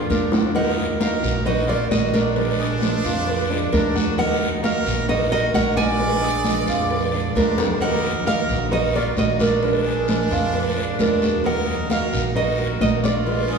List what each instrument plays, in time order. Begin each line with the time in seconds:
Already playing: cuban tres D5
0.09 upright bass D#2, steel-string acoustic guitar D3 A#3 D4 F4, trumpet D4, nylon-string guitar A#4, high conga, short guiro
0.31 steel-string acoustic guitar D4 F4, cuban tres F#4, low bongo, high conga, short guiro
0.54 steel-string acoustic guitar D#3 A#3 D#4 F#4, cuban tres D#4, trumpet A#4, nylon-string guitar F#5, cowbell, high conga, long guiro
0.78 high conga
1.00 steel-string acoustic guitar D#3 A#3 D#4 F#4, cuban tres F#4, trumpet A#4, nylon-string guitar F5, cowbell, high conga, short guiro
1.23 upright bass A#1, high conga, short guiro
1.45 cuban tres D#4, trumpet F#4, nylon-string guitar D#5, muted steel-string acoustic guitar stroke, cowbell, high conga, low conga, long guiro
1.67 steel-string acoustic guitar A#3 D#4 F#4, trumpet F4, cuban tres A#4, nylon-string guitar D5, high conga, low conga
1.90 upright bass A#1, steel-string acoustic guitar D#3 A#3 D#4 F#4, trumpet F#4, nylon-string guitar D#5, cowbell, high conga, short guiro
2.13 steel-string acoustic guitar A#3 D#4 F#4, trumpet D4, nylon-string guitar A#4, cuban tres D5, cowbell, high conga, short guiro
2.36 steel-string acoustic guitar F3 G#3 D4 F4, cowbell, high conga, long guiro
2.59 cuban tres G#4, high conga
2.81 steel-string acoustic guitar F3 G#3 D4 F4, cowbell, high conga, short guiro
3.04 upright bass F2, cuban tres F4, cowbell, short guiro
3.27 muted steel-string acoustic guitar stroke, cowbell, high conga, long guiro
3.49 steel-string acoustic guitar G#3 D4 F4, cuban tres D4, high conga
3.71 upright bass D#2, steel-string acoustic guitar F3 G#3 D4 F4, trumpet D4, nylon-string guitar A#4, cowbell, high conga, short guiro
3.94 steel-string acoustic guitar G#3 D4 F4, cuban tres F#4, high conga, short guiro
4.17 steel-string acoustic guitar D#3 A#3 D#4 F#4, cuban tres D#4, trumpet A#4, nylon-string guitar F#5, cowbell, high conga, long guiro
4.41 high conga
4.63 steel-string acoustic guitar D#3 A#3 D#4 F#4, cuban tres F#4, trumpet A#4, nylon-string guitar F5, cowbell, high conga, short guiro
4.86 upright bass A#1, high conga, short guiro
5.08 cuban tres D#4, trumpet F#4, nylon-string guitar D#5, muted steel-string acoustic guitar stroke, cowbell, high conga, low conga, long guiro
5.31 steel-string acoustic guitar A#3 D#4 F#4, trumpet F#4, cuban tres A#4, nylon-string guitar D#5, high conga
5.54 upright bass A#1, steel-string acoustic guitar D#3 A#3 D#4 F#4, trumpet A#4, nylon-string guitar F#5, cowbell, high conga, short guiro
5.76 steel-string acoustic guitar A#3 D#4 F#4, trumpet D5, cuban tres D5, nylon-string guitar G#5, cowbell, high conga, short guiro
5.99 steel-string acoustic guitar F3 G#3 D4 F4, cowbell, high conga, long guiro
6.23 cuban tres G#4, high conga
6.45 steel-string acoustic guitar F3 G#3 D4 F4, cowbell, high conga, short guiro
6.67 upright bass F2, cuban tres F4, cowbell, short guiro
6.90 muted steel-string acoustic guitar stroke, cowbell, high conga, long guiro
7.13 steel-string acoustic guitar G#3 D4 F4, cuban tres D4, high conga
7.35 upright bass D#2, steel-string acoustic guitar F3 G#3 D4 F4, trumpet D4, nylon-string guitar A#4, cowbell, high conga, short guiro
7.58 steel-string acoustic guitar G#3 D4 F4, cuban tres F#4, high bongo, short guiro
7.66 low conga
7.80 steel-string acoustic guitar D#3 A#3 D#4 F#4, cuban tres D#4, trumpet A#4, nylon-string guitar F#5, cowbell, high conga, long guiro
8.04 high conga
8.26 steel-string acoustic guitar D#3 A#3 D#4 F#4, cuban tres F#4, trumpet A#4, nylon-string guitar F5, cowbell, high conga, short guiro
8.49 upright bass A#1, high conga, short guiro
8.71 cuban tres D#4, trumpet F#4, nylon-string guitar D#5, muted steel-string acoustic guitar stroke, cowbell, high conga, low conga, long guiro
8.94 steel-string acoustic guitar A#3 D#4 F#4, trumpet F4, cuban tres A#4, nylon-string guitar D5, high conga, low conga
9.17 upright bass A#1, steel-string acoustic guitar D#3 A#3 D#4 F#4, trumpet F#4, nylon-string guitar D#5, cowbell, high conga, short guiro
9.39 steel-string acoustic guitar A#3 D#4 F#4, trumpet D4, nylon-string guitar A#4, cuban tres D5, cowbell, high conga, short guiro
9.62 steel-string acoustic guitar F3 G#3 D4 F4, cowbell, high conga, long guiro
9.86 cuban tres G#4, high conga
10.08 steel-string acoustic guitar F3 G#3 D4 F4, cowbell, high conga, short guiro
10.31 upright bass F2, cuban tres F4, cowbell, short guiro
10.53 muted steel-string acoustic guitar stroke, cowbell, high conga, long guiro
10.76 steel-string acoustic guitar G#3 D4 F4, cuban tres D4, high conga
10.99 upright bass D#2, steel-string acoustic guitar F3 G#3 D4 F4, trumpet D4, nylon-string guitar A#4, cowbell, high conga, short guiro
11.21 steel-string acoustic guitar G#3 D4 F4, cuban tres F#4, high conga, short guiro
11.44 steel-string acoustic guitar D#3 A#3 D#4 F#4, cuban tres D#4, trumpet A#4, nylon-string guitar F#5, cowbell, high conga, long guiro
11.67 high conga
11.90 steel-string acoustic guitar D#3 A#3 D#4 F#4, cuban tres F#4, trumpet A#4, nylon-string guitar F5, cowbell, high conga, short guiro
12.13 upright bass A#1, high conga, short guiro
12.35 cuban tres D#4, trumpet F#4, nylon-string guitar D#5, muted steel-string acoustic guitar stroke, cowbell, high conga, low conga, long guiro
12.58 steel-string acoustic guitar A#3 D#4 F#4, cuban tres A#4, high conga
12.80 upright bass A#1, steel-string acoustic guitar D#3 A#3 D#4 F#4, trumpet F#4, nylon-string guitar D#5, cowbell, high conga, short guiro
13.02 steel-string acoustic guitar A#3 D#4 F#4, trumpet F4, cuban tres D5, nylon-string guitar D5, cowbell, high conga, short guiro
13.26 steel-string acoustic guitar F3 G#3 D4 F4, cowbell, long guiro
13.49 cuban tres G#4, high conga